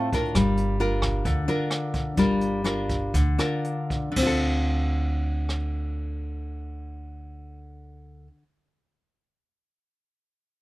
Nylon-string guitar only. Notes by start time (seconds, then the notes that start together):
Already playing: A2
0.13 D4 F4 A#4
0.35 G3
0.80 D4 F4 A#4
1.25 D3
1.48 D4 F4 A#4
2.17 G3 D4 F4 A#4
2.64 D4 F4 A#4
3.14 D3
3.38 D4 F4 A#4
4.12 D3
4.17 C4
4.22 F4
4.27 A4